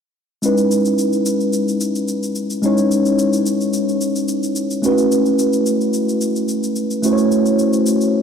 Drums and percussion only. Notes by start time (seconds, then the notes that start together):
0.43 shaker
0.57 shaker
0.71 shaker
0.85 shaker
0.98 shaker
1.13 shaker
1.26 shaker
1.40 shaker
1.53 shaker
1.68 shaker
1.81 shaker
1.95 shaker
2.08 shaker
2.23 shaker
2.35 shaker
2.50 shaker
2.63 shaker
2.78 shaker
2.91 shaker
3.06 shaker
3.19 shaker
3.33 shaker
3.46 shaker
3.61 shaker
3.73 shaker
3.89 shaker
4.01 shaker
4.16 shaker
4.28 shaker
4.43 shaker
4.56 shaker
4.71 shaker
4.84 shaker
4.98 shaker
5.12 shaker
5.26 shaker
5.39 shaker
5.53 shaker
5.66 shaker
5.81 shaker
5.93 shaker
6.09 shaker
6.21 shaker
6.36 shaker
6.48 shaker
6.63 shaker
6.76 shaker
6.91 shaker
7.03 shaker
7.18 shaker
7.32 shaker
7.46 shaker
7.59 shaker
7.73 shaker
7.86 shaker
8.01 shaker